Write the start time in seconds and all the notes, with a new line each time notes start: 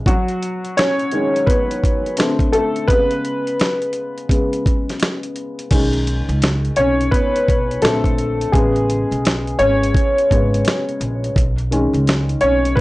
0.06 F#3 F#4, kick, closed hi-hat
0.28 closed hi-hat
0.43 closed hi-hat
0.65 closed hi-hat
0.77 C#4 C#5, snare, closed hi-hat
0.99 closed hi-hat
1.11 D#3 G#3 C#4, closed hi-hat
1.36 closed hi-hat
1.46 B3 B4, kick, closed hi-hat
1.71 closed hi-hat
1.84 kick, closed hi-hat
2.06 closed hi-hat
2.17 D3 A3 C4, snare, closed hi-hat
2.39 kick, closed hi-hat
2.52 A3 A4, closed hi-hat
2.76 closed hi-hat
2.87 C#3 G#3 B3 B4, kick, closed hi-hat
3.11 closed hi-hat
3.25 closed hi-hat
3.47 closed hi-hat
3.60 snare, closed hi-hat
3.82 closed hi-hat
3.93 closed hi-hat
4.18 closed hi-hat
4.29 C#3 G#3 B3, kick, closed hi-hat
4.53 closed hi-hat
4.66 kick, closed hi-hat
4.89 snare, closed hi-hat
5.00 snare, closed hi-hat
5.23 closed hi-hat
5.36 closed hi-hat
5.59 closed hi-hat
5.71 B1 D#3 G#3 C#4, kick, closed hi-hat, crash
5.93 closed hi-hat
6.07 closed hi-hat
6.29 C#2, closed hi-hat
6.42 snare, closed hi-hat
6.65 closed hi-hat
6.76 B1 C#4 C#5, closed hi-hat
7.01 closed hi-hat
7.11 B3 B4, kick, closed hi-hat
7.36 closed hi-hat
7.48 B1, kick, closed hi-hat
7.71 closed hi-hat
7.82 A#1 D3 A3 C4 A4, snare, closed hi-hat
8.04 kick, closed hi-hat
8.18 closed hi-hat
8.41 closed hi-hat
8.52 A1 C#3 G#3 B3 G#4, kick, closed hi-hat
8.76 closed hi-hat
8.90 closed hi-hat
9.11 B1, closed hi-hat
9.25 snare, closed hi-hat
9.47 closed hi-hat
9.59 G#1 C#4 C#5, closed hi-hat
9.83 closed hi-hat
9.94 kick, closed hi-hat
10.18 closed hi-hat
10.30 G#1 C#3 G#3 B3, kick, closed hi-hat
10.54 closed hi-hat
10.65 snare, closed hi-hat
10.89 closed hi-hat
11.00 A#1, closed hi-hat
11.24 closed hi-hat
11.36 B1, kick, closed hi-hat
11.58 closed hi-hat
11.71 D#3 G#3 C#4, closed hi-hat
11.93 C#2, closed hi-hat
12.07 snare, closed hi-hat
12.29 closed hi-hat
12.41 B1 C#4 C#5, closed hi-hat
12.65 closed hi-hat
12.76 B4, kick